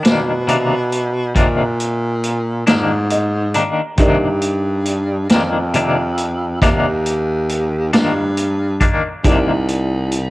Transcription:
0.00 0.30 D4 soft
0.00 3.94 D#4 soft
0.00 3.94 G4 soft
0.00 3.94 A#4 soft
0.00 3.95 D5 soft
0.04 1.32 B2 medium
0.04 0.31 D#3 soft
0.04 0.31 A#3 soft
0.04 snare medium
0.04 closed hi-hat medium
0.48 0.74 C3 medium
0.48 0.74 D#3 medium
0.48 0.75 A#3 medium
0.48 0.75 D4 medium
0.48 closed hi-hat soft
0.92 closed hi-hat soft
1.35 2.63 A#2 medium
1.35 1.62 C3 medium
1.35 1.62 D#3 medium
1.35 1.62 A#3 medium
1.35 1.62 D4 medium
1.35 kick medium
1.35 closed hi-hat medium
1.80 closed hi-hat medium
2.24 closed hi-hat soft
2.67 3.68 G#2 medium
2.67 2.94 D#3 soft
2.67 2.94 A#3 soft
2.67 2.93 D4 medium
2.67 snare medium
2.67 closed hi-hat medium
3.10 3.52 D#5 soft
3.10 closed hi-hat medium
3.54 3.82 D#3 soft
3.54 3.81 A#3 soft
3.54 3.81 D4 medium
3.54 3.96 A#5 medium
3.54 closed hi-hat medium
3.98 5.26 G2 medium
3.98 4.25 C3 medium
3.98 4.26 D#3 medium
3.98 4.26 A#3 medium
3.98 4.26 D4 medium
3.98 9.21 D#4 medium
3.98 9.21 G4 soft
3.98 9.21 A#4 medium
3.98 9.22 D5 medium
3.98 kick medium
3.98 closed hi-hat medium
4.42 closed hi-hat medium
4.85 closed hi-hat soft
5.29 6.58 F2 medium
5.29 5.57 D#3 soft
5.29 5.57 A#3 soft
5.29 5.56 D4 medium
5.29 snare medium
5.29 closed hi-hat medium
5.74 6.00 C3 medium
5.74 6.01 D#3 medium
5.74 6.01 A#3 medium
5.74 6.01 D4 medium
5.74 closed hi-hat medium
6.18 closed hi-hat soft
6.62 7.89 D#2 medium
6.62 6.88 C3 medium
6.62 6.88 D#3 medium
6.62 6.88 A#3 medium
6.62 6.88 D4 medium
6.62 kick medium
6.62 snare soft
6.62 closed hi-hat medium
7.06 closed hi-hat soft
7.49 closed hi-hat soft
7.93 8.94 G2 medium
7.93 8.20 D#3 soft
7.93 8.20 A#3 soft
7.93 8.19 D4 medium
7.93 snare medium
7.93 closed hi-hat medium
8.37 closed hi-hat soft
8.81 9.08 D#3 soft
8.81 9.07 A#3 soft
8.81 9.07 D4 medium
8.81 kick medium
8.81 closed hi-hat medium
9.24 10.30 C2 medium
9.24 9.51 C3 medium
9.24 9.51 D#3 medium
9.24 9.51 A#3 medium
9.24 9.51 D4 medium
9.24 10.30 D#4 medium
9.24 10.30 G4 medium
9.24 10.30 A#4 soft
9.24 10.30 D5 medium
9.24 kick medium
9.24 closed hi-hat medium
9.68 closed hi-hat medium
10.11 closed hi-hat medium

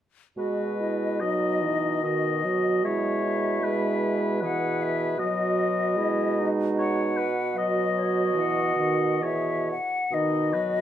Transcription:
0.37 5.15 B2 soft
0.37 1.24 G#3 soft
0.37 0.82 F#4 soft
0.37 1.22 B4 soft
0.37 2.86 D#5 soft
0.80 1.21 E4 soft
1.20 1.64 F#3 soft
1.20 2.05 D#4 soft
1.20 2.03 D#5 soft
1.62 2.04 E3 soft
2.03 2.46 D#3 soft
2.03 2.88 F#4 soft
2.03 2.84 D#5 soft
2.44 2.85 F#3 soft
2.83 3.62 G#3 soft
2.83 3.25 E4 soft
2.83 3.65 C#5 soft
2.83 4.43 E5 soft
3.25 4.44 E4 soft
3.63 4.44 G#3 soft
3.63 4.41 B4 soft
4.42 5.19 E3 soft
4.42 5.21 G#4 soft
4.42 5.18 B4 soft
4.42 4.84 F#5 soft
4.83 5.20 E5 soft
5.18 9.74 B2 medium
5.18 5.99 F#3 soft
5.18 6.00 F#4 soft
5.18 6.48 D#5 soft
5.97 7.29 G#3 soft
5.97 6.40 E4 medium
6.39 7.30 D#4 soft
6.79 7.19 C#5 soft
6.79 7.58 F#5 soft
7.17 7.56 B4 soft
7.56 8.32 F#3 soft
7.56 9.24 F#4 soft
7.56 8.00 D#5 soft
7.56 9.24 D#5 soft
7.99 8.40 C#5 soft
8.35 8.76 E3 soft
8.35 9.24 F#5 soft
8.76 9.23 D#3 soft
9.21 9.78 E3 soft
9.21 9.79 G#4 soft
9.21 9.79 C#5 soft
9.21 9.69 E5 soft
9.71 10.16 F#5 soft
10.11 10.81 B2 soft
10.11 10.56 D#3 soft
10.11 10.55 D#4 soft
10.11 10.55 D#5 soft
10.11 10.81 D#5 medium
10.53 10.81 F#3 soft
10.53 10.81 F#4 soft
10.53 10.81 B4 soft

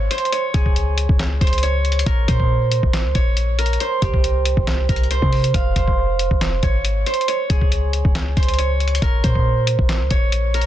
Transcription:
0.00 0.17 C#5 medium
0.00 0.25 F5 medium
0.11 0.38 C5 medium
0.11 closed hi-hat medium
0.18 closed hi-hat medium
0.25 closed hi-hat soft
0.32 1.47 C#5 medium
0.32 closed hi-hat medium
0.54 1.07 C#2 loud
0.54 2.81 G#4 medium
0.54 kick medium
0.54 closed hi-hat medium
0.66 kick medium
0.76 closed hi-hat medium
0.98 closed hi-hat medium
1.09 1.40 C#2 loud
1.09 kick loud
1.19 snare loud
1.19 clap loud
1.19 closed hi-hat medium
1.41 2.04 C#2 loud
1.41 1.69 C5 medium
1.41 kick medium
1.41 closed hi-hat medium
1.47 closed hi-hat medium
1.53 closed hi-hat medium
1.58 closed hi-hat medium
1.63 2.34 C#5 loud
1.63 closed hi-hat medium
1.85 closed hi-hat soft
1.92 closed hi-hat medium
1.99 closed hi-hat medium
2.06 2.27 A#1 loud
2.06 3.58 A#4 medium
2.06 kick loud
2.06 closed hi-hat medium
2.28 2.81 A#2 loud
2.28 3.21 C5 medium
2.28 kick medium
2.28 closed hi-hat medium
2.40 kick medium
2.72 closed hi-hat medium
2.83 3.06 A#1 loud
2.83 kick loud
2.93 snare loud
2.93 clap medium
2.93 closed hi-hat medium
3.05 3.15 C#2 loud
3.15 3.78 A#1 loud
3.15 3.87 C#5 medium
3.15 kick medium
3.15 closed hi-hat medium
3.37 closed hi-hat medium
3.59 4.89 A#4 medium
3.59 closed hi-hat medium
3.66 closed hi-hat medium
3.73 closed hi-hat soft
3.80 5.10 C5 medium
3.80 closed hi-hat medium
4.02 4.55 C2 loud
4.02 6.37 G4 medium
4.02 kick medium
4.02 closed hi-hat medium
4.14 kick medium
4.24 closed hi-hat medium
4.45 closed hi-hat medium
4.57 4.88 C2 loud
4.57 kick loud
4.67 snare loud
4.67 clap medium
4.67 closed hi-hat medium
4.89 5.21 C2 loud
4.89 7.01 A#4 medium
4.89 kick medium
4.89 closed hi-hat medium
4.96 closed hi-hat medium
5.04 closed hi-hat medium
5.11 5.76 C5 loud
5.11 closed hi-hat medium
5.22 5.53 C3 loud
5.22 kick medium
5.33 closed hi-hat soft
5.33 open hi-hat soft
5.44 closed hi-hat medium
5.54 5.75 F1 loud
5.54 7.21 F5 medium
5.54 kick loud
5.54 closed hi-hat medium
5.76 6.29 F1 loud
5.76 6.69 C5 medium
5.76 kick medium
5.76 closed hi-hat medium
5.88 kick medium
6.19 closed hi-hat medium
6.31 6.62 F1 loud
6.31 kick loud
6.41 snare loud
6.41 clap medium
6.41 closed hi-hat medium
6.63 7.05 G#1 loud
6.63 7.12 C#5 medium
6.63 kick medium
6.63 closed hi-hat medium
6.85 closed hi-hat medium
7.06 7.34 C5 medium
7.06 closed hi-hat medium
7.14 closed hi-hat medium
7.21 closed hi-hat soft
7.28 8.43 C#5 medium
7.28 closed hi-hat medium
7.50 8.03 C#2 loud
7.50 9.77 G#4 medium
7.50 kick medium
7.50 closed hi-hat medium
7.61 kick medium
7.72 closed hi-hat medium
7.93 closed hi-hat medium
8.05 8.36 C#2 loud
8.05 kick loud
8.15 snare loud
8.15 clap medium
8.15 closed hi-hat medium
8.37 8.99 C#2 loud
8.37 8.65 C5 medium
8.37 kick loud
8.37 closed hi-hat medium
8.43 closed hi-hat medium
8.48 closed hi-hat medium
8.54 closed hi-hat medium
8.59 9.30 C#5 loud
8.59 closed hi-hat medium
8.80 closed hi-hat soft
8.88 closed hi-hat medium
8.95 closed hi-hat medium
9.02 9.23 A#1 loud
9.02 10.54 A#4 loud
9.02 kick loud
9.02 closed hi-hat medium
9.24 9.77 A#2 loud
9.24 10.17 C5 medium
9.24 kick medium
9.24 closed hi-hat medium
9.35 kick medium
9.67 closed hi-hat medium
9.79 10.02 A#1 loud
9.79 kick medium
9.89 snare loud
9.89 clap medium
9.89 closed hi-hat medium
10.01 10.10 C#2 loud
10.11 10.66 A#1 loud
10.11 10.66 C#5 medium
10.11 kick medium
10.11 closed hi-hat medium
10.32 closed hi-hat medium
10.54 10.66 A#4 medium
10.54 closed hi-hat medium
10.61 closed hi-hat medium

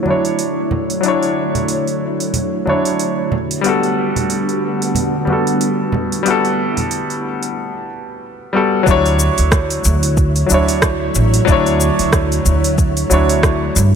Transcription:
0.00 3.28 D3 medium
0.00 0.03 F#3 medium
0.00 3.28 F#3 medium
0.00 0.99 F#3 medium
0.00 7.52 A3 medium
0.00 0.05 D4 medium
0.00 0.08 E4 medium
0.00 3.28 E4 medium
0.00 0.10 C#5 medium
0.00 3.28 C#5 medium
0.05 1.01 D4 medium
0.05 1.02 E4 medium
0.05 high conga medium
0.10 1.03 C#5 medium
0.25 open hi-hat soft
0.39 open hi-hat soft
0.71 high conga medium
0.71 low conga medium
0.90 open hi-hat soft
1.01 2.62 F#3 medium
1.01 2.63 D4 medium
1.01 open hi-hat soft
1.06 2.65 E4 medium
1.06 2.66 C#5 medium
1.23 open hi-hat soft
1.55 open hi-hat soft
1.55 low conga medium
1.68 open hi-hat soft
1.87 open hi-hat soft
2.20 open hi-hat soft
2.34 open hi-hat soft
2.34 low conga medium
2.65 3.30 F#3 medium
2.65 3.31 D4 medium
2.65 3.31 E4 medium
2.65 3.32 C#5 medium
2.65 high conga medium
2.85 open hi-hat soft
2.99 open hi-hat soft
3.32 7.52 D3 medium
3.32 7.52 G3 medium
3.32 7.52 B3 medium
3.32 5.91 F#4 medium
3.32 high conga medium
3.32 low conga medium
3.51 open hi-hat soft
3.61 5.23 G3 medium
3.61 5.24 B3 medium
3.61 open hi-hat soft
3.66 5.26 F#4 medium
3.66 5.27 A4 medium
3.83 open hi-hat soft
4.16 open hi-hat soft
4.16 low conga medium
4.30 open hi-hat soft
4.49 open hi-hat soft
4.82 open hi-hat soft
4.95 open hi-hat soft
4.95 low conga medium
5.25 6.21 G3 medium
5.25 6.23 B3 medium
5.25 high conga medium
5.30 6.24 F#4 medium
5.30 6.25 A4 medium
5.47 open hi-hat soft
5.61 open hi-hat soft
5.92 7.55 E4 medium
5.92 high conga medium
5.92 low conga medium
6.12 open hi-hat soft
6.23 7.84 G3 medium
6.23 7.86 B3 medium
6.23 open hi-hat soft
6.28 7.87 F#4 medium
6.28 7.88 A4 medium
6.45 open hi-hat soft
6.77 open hi-hat soft
6.77 low conga medium
6.91 open hi-hat soft
7.10 open hi-hat soft
7.43 open hi-hat soft
8.53 8.83 G3 medium
8.53 8.84 B3 medium
8.53 8.84 F#4 medium
8.53 8.85 A4 medium
8.83 9.27 D2 medium
8.83 13.95 D3 medium
8.83 10.45 F#3 medium
8.83 13.72 F#3 medium
8.83 13.95 A3 medium
8.83 10.46 D4 medium
8.83 13.72 E4 medium
8.83 13.72 C#5 medium
8.83 kick loud
8.83 cabasa soft
8.88 10.47 E4 medium
8.88 10.49 C#5 loud
9.06 open hi-hat soft
9.06 cabasa soft
9.19 cabasa medium
9.38 9.77 D2 medium
9.38 open hi-hat medium
9.38 cabasa soft
9.52 kick loud
9.52 cross-stick loud
9.52 cabasa soft
9.70 open hi-hat soft
9.70 cabasa soft
9.84 10.42 D2 loud
9.84 cabasa medium
10.03 open hi-hat medium
10.03 cabasa soft
10.17 kick loud
10.17 cabasa soft
10.36 open hi-hat soft
10.36 cabasa soft
10.46 11.43 F#3 medium
10.46 11.44 D4 medium
10.46 cabasa medium
10.51 11.07 D2 medium
10.51 11.45 E4 medium
10.51 11.47 C#5 medium
10.68 open hi-hat medium
10.68 cabasa soft
10.82 kick loud
10.82 cross-stick loud
10.82 cabasa soft
11.15 11.38 A1 loud
11.15 cabasa medium
11.34 open hi-hat medium
11.34 cabasa soft
11.45 11.88 D2 loud
11.45 13.06 F#3 loud
11.45 13.07 D4 medium
11.45 kick loud
11.45 cabasa soft
11.50 13.09 E4 medium
11.50 13.10 C#5 loud
11.66 open hi-hat soft
11.66 cabasa soft
11.81 cabasa medium
11.99 12.38 D2 medium
11.99 open hi-hat medium
11.99 cabasa soft
12.13 kick loud
12.13 cross-stick medium
12.13 cabasa soft
12.32 open hi-hat soft
12.32 cabasa soft
12.45 13.03 D2 medium
12.45 cabasa medium
12.64 open hi-hat medium
12.64 cabasa soft
12.78 kick loud
12.78 cabasa soft
12.97 open hi-hat soft
12.97 cabasa soft
13.10 13.68 D2 medium
13.10 13.74 F#3 medium
13.10 13.74 D4 medium
13.10 13.75 E4 medium
13.10 13.76 C#5 medium
13.10 cabasa medium
13.29 open hi-hat medium
13.29 cabasa soft
13.43 kick loud
13.43 cross-stick loud
13.43 cabasa soft
13.76 13.95 G2 loud
13.76 13.95 G3 medium
13.76 13.95 B3 medium
13.76 13.95 F#4 medium
13.76 cabasa medium

